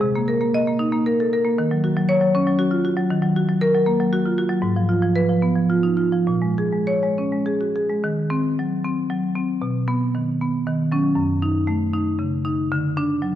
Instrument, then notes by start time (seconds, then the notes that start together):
marimba
0.01 C3
0.15 A#3
0.28 A#4
0.41 A#3
0.54 D#5
0.67 A#3
0.79 D#4
0.92 A#3
1.06 A#4
1.20 A4
1.33 A#4
1.45 A#3
1.58 D#3
1.71 F#3
1.84 F#4
1.96 F#3
2.09 C#5
2.21 F#3
2.35 C#4
2.47 F#3
2.59 F#4
2.71 F4
2.85 F#4
2.97 F#3
3.10 D#3
3.22 F#3
3.36 F#4
3.49 F#3
3.61 A#4
3.75 F#3
3.86 A#3
4.00 F#3
4.13 F#4
4.26 F4
4.38 F#4
4.49 F#3
4.62 G#2
4.76 F3
4.89 F4
5.02 F3
5.16 B4
5.29 F3
5.42 B3
5.56 F3
5.70 F4
5.83 D#4
5.97 F4
6.12 F3
6.27 A#2
6.42 G#3
6.58 G#4
6.73 G#3
6.87 C#5
7.03 G#3
7.18 C#4
7.32 G#3
7.46 G#4
7.61 F#4
7.76 G#4
7.89 G#3
8.04 D#3
8.30 C4
8.59 F#3
8.84 C4
9.10 F#3
9.36 C4
9.62 B2
9.88 B3
10.15 D#3
10.41 B3
10.67 D#3
10.92 F#3 C#4
11.15 F#2
11.42 D#4
11.67 A3
11.94 D#4
12.19 C#3
12.45 D#4
12.72 D3
12.97 D4
13.22 F#3